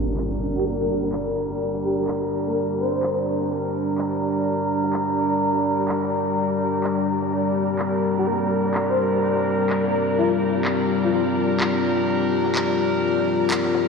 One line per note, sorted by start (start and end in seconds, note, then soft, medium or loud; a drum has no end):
0.00 3.49 G3 medium
0.00 13.88 G3 medium
0.00 3.49 D4 medium
0.00 7.28 D4 medium
0.00 13.88 G4 medium
0.00 3.49 A#4 medium
0.00 3.50 A#4 medium
0.00 13.88 A#5 medium
0.00 impact medium
0.17 13.88 D5 medium
0.17 clap loud
0.17 closed hi-hat medium
0.41 closed hi-hat medium
0.55 0.63 G4 medium
0.55 closed hi-hat soft
0.65 0.74 A#4 medium
0.80 0.86 A#4 medium
0.89 closed hi-hat medium
1.03 snare soft
1.12 clap loud
1.27 snare soft
1.37 closed hi-hat medium
1.60 closed hi-hat medium
1.74 snare soft
1.84 1.93 G4 medium
1.84 closed hi-hat medium
1.98 2.04 G4 medium
2.08 clap loud
2.22 snare soft
2.32 closed hi-hat medium
2.46 2.55 A#4 medium
2.55 closed hi-hat medium
2.70 closed hi-hat soft
2.79 3.17 C5 medium
2.79 closed hi-hat medium
3.03 clap loud
3.03 closed hi-hat medium
3.17 closed hi-hat soft
3.27 closed hi-hat medium
3.41 snare soft
3.51 7.15 G3 medium
3.51 7.15 D4 medium
3.51 7.15 A#4 medium
3.51 7.31 A#5 medium
3.51 closed hi-hat medium
3.75 closed hi-hat medium
3.98 clap loud
3.98 closed hi-hat medium
4.13 closed hi-hat soft
4.22 closed hi-hat medium
4.46 closed hi-hat medium
4.70 closed hi-hat medium
4.84 snare medium
4.93 clap loud
4.93 closed hi-hat medium
5.08 snare soft
5.17 closed hi-hat medium
5.41 closed hi-hat medium
5.55 snare soft
5.65 closed hi-hat medium
5.89 clap loud
5.89 closed hi-hat medium
6.03 snare soft
6.13 closed hi-hat medium
6.27 closed hi-hat soft
6.36 closed hi-hat medium
6.51 closed hi-hat soft
6.60 closed hi-hat medium
6.84 clap loud
6.98 closed hi-hat soft
7.08 closed hi-hat medium
7.22 snare soft
7.32 11.10 G3 medium
7.32 13.88 C4 medium
7.32 11.10 D4 medium
7.32 11.10 A#4 medium
7.32 11.12 A#4 medium
7.32 closed hi-hat medium
7.56 closed hi-hat medium
7.79 clap loud
7.79 closed hi-hat medium
8.03 closed hi-hat medium
8.17 8.25 G4 medium
8.17 closed hi-hat soft
8.27 8.36 A#4 medium
8.27 closed hi-hat medium
8.41 8.47 A#4 medium
8.51 closed hi-hat medium
8.65 snare soft
8.74 clap loud
8.89 8.98 C5 medium
8.89 snare soft
8.98 closed hi-hat medium
9.22 closed hi-hat medium
9.37 snare soft
9.46 closed hi-hat medium
9.70 clap loud
9.70 closed hi-hat medium
9.84 9.93 A#4 medium
9.84 snare soft
9.94 closed hi-hat medium
10.08 closed hi-hat soft
10.17 10.31 F4 medium
10.17 closed hi-hat medium
10.32 closed hi-hat soft
10.41 closed hi-hat medium
10.65 clap loud
10.79 closed hi-hat soft
10.89 closed hi-hat medium
11.03 11.09 F4 medium
11.03 snare soft
11.13 13.88 G3 medium
11.13 13.88 D4 medium
11.13 13.88 F4 medium
11.13 11.22 F4 medium
11.13 13.88 A#4 medium
11.13 closed hi-hat medium
11.37 closed hi-hat medium
11.60 clap loud
11.75 closed hi-hat soft
11.84 closed hi-hat medium
11.98 closed hi-hat soft
12.08 closed hi-hat medium
12.32 closed hi-hat medium
12.46 snare medium
12.55 clap loud
12.70 snare soft
12.80 closed hi-hat medium
13.03 closed hi-hat medium
13.17 snare soft
13.27 closed hi-hat medium
13.51 clap loud
13.51 closed hi-hat medium
13.65 snare medium
13.75 snare loud
13.75 closed hi-hat medium